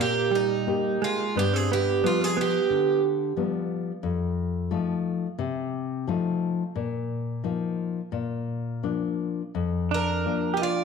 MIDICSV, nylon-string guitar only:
0, 0, Header, 1, 2, 480
1, 0, Start_track
1, 0, Tempo, 692841
1, 946, Time_signature, 4, 2, 24, 8
1, 946, Tempo, 674916
1, 5266, Tempo, 705882
1, 7578, End_track
2, 0, Start_track
2, 0, Title_t, "Nylon-string guitar"
2, 0, Program_c, 0, 24
2, 0, Note_on_c, 0, 46, 57
2, 451, Note_off_c, 0, 46, 0
2, 463, Note_on_c, 0, 58, 43
2, 464, Note_on_c, 0, 63, 42
2, 470, Note_on_c, 0, 67, 49
2, 849, Note_off_c, 0, 58, 0
2, 849, Note_off_c, 0, 63, 0
2, 853, Note_off_c, 0, 67, 0
2, 938, Note_on_c, 0, 43, 64
2, 1409, Note_off_c, 0, 43, 0
2, 1420, Note_on_c, 0, 53, 43
2, 1422, Note_on_c, 0, 55, 42
2, 1426, Note_on_c, 0, 59, 47
2, 1800, Note_off_c, 0, 55, 0
2, 1801, Note_off_c, 0, 53, 0
2, 1804, Note_off_c, 0, 59, 0
2, 1896, Note_on_c, 0, 50, 63
2, 2358, Note_off_c, 0, 50, 0
2, 2369, Note_on_c, 0, 53, 48
2, 2373, Note_on_c, 0, 55, 43
2, 2374, Note_on_c, 0, 59, 55
2, 2755, Note_off_c, 0, 53, 0
2, 2757, Note_off_c, 0, 59, 0
2, 2758, Note_off_c, 0, 55, 0
2, 2840, Note_on_c, 0, 41, 64
2, 3314, Note_off_c, 0, 41, 0
2, 3323, Note_on_c, 0, 53, 49
2, 3325, Note_on_c, 0, 57, 46
2, 3331, Note_on_c, 0, 63, 51
2, 3714, Note_off_c, 0, 53, 0
2, 3716, Note_off_c, 0, 57, 0
2, 3717, Note_off_c, 0, 63, 0
2, 3805, Note_on_c, 0, 48, 68
2, 4280, Note_off_c, 0, 48, 0
2, 4295, Note_on_c, 0, 53, 49
2, 4301, Note_on_c, 0, 57, 45
2, 4302, Note_on_c, 0, 63, 55
2, 4684, Note_off_c, 0, 53, 0
2, 4685, Note_off_c, 0, 57, 0
2, 4688, Note_off_c, 0, 63, 0
2, 4779, Note_on_c, 0, 46, 59
2, 5250, Note_off_c, 0, 46, 0
2, 5265, Note_on_c, 0, 53, 42
2, 5269, Note_on_c, 0, 63, 45
2, 5270, Note_on_c, 0, 58, 39
2, 5643, Note_off_c, 0, 53, 0
2, 5645, Note_off_c, 0, 63, 0
2, 5647, Note_off_c, 0, 58, 0
2, 5729, Note_on_c, 0, 46, 58
2, 6202, Note_off_c, 0, 46, 0
2, 6213, Note_on_c, 0, 58, 36
2, 6214, Note_on_c, 0, 53, 37
2, 6216, Note_on_c, 0, 62, 43
2, 6605, Note_off_c, 0, 53, 0
2, 6605, Note_off_c, 0, 58, 0
2, 6607, Note_off_c, 0, 62, 0
2, 6698, Note_on_c, 0, 41, 59
2, 7170, Note_off_c, 0, 41, 0
2, 7182, Note_on_c, 0, 53, 38
2, 7184, Note_on_c, 0, 58, 36
2, 7187, Note_on_c, 0, 62, 45
2, 7566, Note_off_c, 0, 53, 0
2, 7566, Note_off_c, 0, 58, 0
2, 7569, Note_off_c, 0, 62, 0
2, 7578, End_track
0, 0, End_of_file